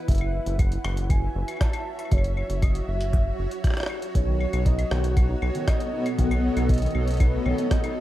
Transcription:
Already playing: E4 B4 F#5
0.08 F#1 F#4 E5, kick, closed hi-hat
0.12 C#5, closed hi-hat
0.15 closed hi-hat
0.18 closed hi-hat, claves
0.27 E5
0.46 F#1, closed hi-hat
0.59 F#5, kick, closed hi-hat, claves
0.72 closed hi-hat
0.85 F#1, cross-stick, claves
0.97 closed hi-hat
1.10 G#5, kick, closed hi-hat, claves
1.35 F#1
1.48 closed hi-hat, claves
1.52 claves
1.57 claves
1.61 A5, kick, cross-stick, closed hi-hat, claves
1.65 claves
1.69 claves
1.73 closed hi-hat, claves
1.99 closed hi-hat, claves
2.05 claves
2.11 F#1 C#5, kick, closed hi-hat, claves
2.18 claves
2.24 closed hi-hat
2.37 claves
2.50 F#1, closed hi-hat
2.62 D#5, kick, closed hi-hat, claves
2.75 closed hi-hat
2.88 F#1 E5
3.01 closed hi-hat
3.13 kick, closed hi-hat
3.39 F#1
3.51 closed hi-hat
3.64 kick, cross-stick, closed hi-hat
3.67 cross-stick
3.70 cross-stick
3.74 cross-stick
3.77 cross-stick, closed hi-hat
3.80 cross-stick
3.83 cross-stick
3.86 cross-stick, claves
4.02 closed hi-hat
4.15 B1 B3 C#5, kick, closed hi-hat
4.28 D#3
4.40 claves
4.53 B1 A4, closed hi-hat, claves
4.66 D#4 D#5, kick, closed hi-hat
4.79 closed hi-hat, claves
4.91 B1 D#3 D#5 F#5, cross-stick
5.04 closed hi-hat
5.17 kick, closed hi-hat, claves
5.29 D#4
5.42 B1, claves
5.55 D#3, closed hi-hat
5.68 D#5, kick, cross-stick, closed hi-hat, claves
5.80 closed hi-hat
5.93 D#4
6.06 closed hi-hat, claves
6.18 B1 D#3 F#5, kick, closed hi-hat
6.31 closed hi-hat, claves
6.56 B1 D#4, closed hi-hat, claves
6.69 D#5, kick, closed hi-hat
6.74 closed hi-hat
6.78 closed hi-hat
6.82 D#3, closed hi-hat
6.86 closed hi-hat
6.91 closed hi-hat
6.95 B1, claves
7.08 closed hi-hat
7.11 closed hi-hat
7.14 closed hi-hat
7.17 kick, closed hi-hat
7.20 D#4 B4, closed hi-hat, claves
7.46 B1 D#3 C#5, claves
7.58 closed hi-hat
7.71 D#5, kick, cross-stick, closed hi-hat
7.84 D#4, closed hi-hat, claves

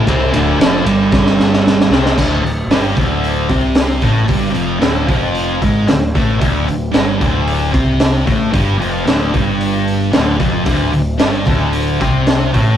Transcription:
0.07 C2 C3 C4, kick, ride
0.32 D1 D2 D3, ride
0.57 F1 F2
0.61 F3, snare, ride
0.85 G1 G2 G3, ride
1.12 kick, snare
1.26 snare
1.40 snare
1.53 snare
1.67 snare
1.81 snare
1.89 C2 C3 C4, snare
2.06 snare
2.16 D1 D2 D3, kick, crash
2.41 D1 D2
2.46 open hi-hat
2.66 G1
2.70 G2 G3, snare, open hi-hat
2.96 D1 D2 D3, kick, open hi-hat
3.24 open hi-hat
3.49 C2 C3 C4, kick, open hi-hat
3.75 snare, open hi-hat
4.01 A1 A2 A3, kick, open hi-hat
4.26 G1 G2 G3, kick, open hi-hat
4.51 F1 F2 F3, open hi-hat
4.79 D1 D2 D3, snare, open hi-hat
5.07 F1 F2 F3, kick, open hi-hat
5.35 open hi-hat
5.62 G#1 G#2 G#3, kick, open hi-hat
5.87 D1 D2, snare, open hi-hat
6.14 A1 A2 A3, kick, open hi-hat
6.39 D1 D2 D3, kick, open hi-hat
6.67 D1 D2, open hi-hat
6.92 G1 G2 G3, snare, open hi-hat
7.19 D1 D2 D3, kick, open hi-hat
7.48 open hi-hat
7.72 C2 C3 C4, kick, open hi-hat
8.00 snare, open hi-hat
8.25 A1 A2 A3, kick, open hi-hat
8.52 G1 G2 G3, kick, open hi-hat
8.78 F1 F2 F3, open hi-hat
9.06 D1 D2 D3, snare, open hi-hat
9.33 G1 G2 G3, kick, open hi-hat
9.61 open hi-hat
9.88 open hi-hat
10.13 D1 D2 D3, snare, open hi-hat
10.37 F1 F2 F3, kick, open hi-hat
10.64 D1 D2 D3, kick, open hi-hat
10.92 D1 D2, open hi-hat
11.18 G1 G2 G3, snare, open hi-hat
11.45 D1 D2 D3, kick, open hi-hat
11.73 open hi-hat
12.01 C2 C3 C4, kick, open hi-hat
12.27 snare, open hi-hat
12.53 A1 A2 A3, kick, open hi-hat

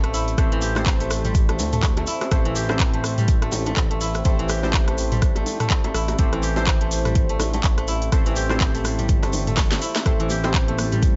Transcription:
Already playing: A1 E3 G3 C4 E4 G4 A4 C5
0.04 A3, cross-stick, closed hi-hat
0.14 E4, open hi-hat, shaker
0.28 closed hi-hat, shaker
0.38 A1 A3 C4 E4 G4 A4 C5, kick, cross-stick, closed hi-hat, shaker
0.52 E3, closed hi-hat
0.61 G4, open hi-hat, shaker
0.75 C4 E4 G4 A4 C5, cross-stick, high bongo, low bongo, shaker
0.86 kick, clap, closed hi-hat, shaker
1.00 A3, closed hi-hat, shaker
1.11 cross-stick, open hi-hat, shaker
1.25 G3, closed hi-hat, mid tom, shaker
1.35 kick, closed hi-hat, shaker
1.49 A3, cross-stick, closed hi-hat, high bongo
1.59 D2, open hi-hat, low bongo, shaker
1.73 A3, closed hi-hat, mid tom, shaker
1.83 kick, cross-stick, clap, closed hi-hat, shaker
1.97 A3, closed hi-hat, high bongo
2.07 E4, open hi-hat, shaker
2.21 cross-stick, closed hi-hat, high bongo, shaker
2.31 A1 A3 C4 E4 G4 A4 C5, kick, cross-stick, closed hi-hat, shaker
2.45 E3, closed hi-hat
2.56 G4, open hi-hat, shaker
2.69 C4 E4 G4 A4 C5, cross-stick, high bongo, low bongo, shaker
2.80 kick, clap, closed hi-hat, shaker
2.94 A3, closed hi-hat
3.04 cross-stick, open hi-hat, shaker
3.18 G3, closed hi-hat, mid tom, shaker
3.28 kick, closed hi-hat, shaker
3.42 A3, cross-stick, closed hi-hat
3.52 A1, open hi-hat, high bongo, low bongo, shaker
3.66 A3, closed hi-hat, low bongo, shaker
3.77 A1, kick, cross-stick, clap, closed hi-hat, shaker
3.91 A3, closed hi-hat
4.01 E4, open hi-hat, shaker
4.14 cross-stick, closed hi-hat, shaker
4.25 A1 A3 C4 E4 G4 A4 C5, kick, closed hi-hat, shaker
4.39 E3, closed hi-hat
4.49 G4, cross-stick, open hi-hat, shaker
4.63 C4 E4 G4 A4 C5, high bongo, low bongo, shaker
4.73 kick, clap, closed hi-hat, shaker
4.88 A3, cross-stick, closed hi-hat
4.98 open hi-hat, shaker
5.12 G3, closed hi-hat, mid tom, shaker
5.22 kick, cross-stick, closed hi-hat, shaker
5.36 A3, closed hi-hat, high bongo
5.46 open hi-hat, low bongo, shaker
5.60 A3, cross-stick, closed hi-hat, mid tom, shaker
5.70 kick, clap, closed hi-hat, shaker
5.84 A3, closed hi-hat, high bongo
5.94 A1 E4, cross-stick, open hi-hat, shaker
6.08 closed hi-hat, high bongo, shaker
6.18 A1 A3 C4 E4 G4 A4 C5, kick, closed hi-hat, shaker
6.33 E3, cross-stick, closed hi-hat
6.43 G4, open hi-hat, shaker
6.56 C4 E4 G4 A4 C5, high bongo, low bongo, shaker
6.67 kick, cross-stick, clap, closed hi-hat, shaker
6.81 A3, closed hi-hat
6.91 open hi-hat, shaker
7.05 G3, cross-stick, closed hi-hat, mid tom, shaker
7.15 kick, closed hi-hat, shaker
7.29 A3, closed hi-hat
7.40 A1, cross-stick, open hi-hat, high bongo, low bongo, shaker
7.54 A3, closed hi-hat, low bongo, shaker
7.64 A1, kick, clap, closed hi-hat, shaker
7.78 A3, cross-stick, closed hi-hat
7.88 E4, open hi-hat, shaker
8.02 closed hi-hat, shaker
8.12 A1 A3 C4 E4 G4 A4 C5, kick, cross-stick, closed hi-hat, shaker
8.26 E3, closed hi-hat, shaker
8.36 G4, open hi-hat, shaker
8.49 C4 E4 G4 A4 C5, cross-stick, high bongo, low bongo, shaker
8.61 kick, clap, closed hi-hat, shaker
8.75 A3, closed hi-hat, shaker
8.84 cross-stick, open hi-hat, low bongo, shaker
8.99 G3, closed hi-hat, mid tom, shaker
9.09 G1, kick, closed hi-hat, shaker
9.23 A3, cross-stick, closed hi-hat, high bongo, shaker
9.33 open hi-hat, high tom, low bongo, shaker
9.47 A3, closed hi-hat, mid tom, high tom, shaker
9.57 kick, cross-stick, snare, clap, closed hi-hat, shaker
9.72 A3, snare, closed hi-hat, high bongo, shaker
9.82 E4, open hi-hat, shaker
9.96 cross-stick, snare, closed hi-hat, high bongo, low bongo, shaker
10.06 A1 A3 C4 E4 G4 A4 C5, kick, cross-stick, closed hi-hat, shaker
10.20 E3, closed hi-hat
10.30 G4, open hi-hat, muted conga, shaker
10.44 C4 E4 G4 A4 C5, cross-stick, high bongo, low bongo, shaker
10.54 kick, clap, closed hi-hat, shaker
10.68 A3, closed hi-hat, high conga
10.78 cross-stick, open hi-hat, muted conga, high conga, shaker
10.92 G3, closed hi-hat, mid tom, shaker
11.02 kick, closed hi-hat, low conga, shaker

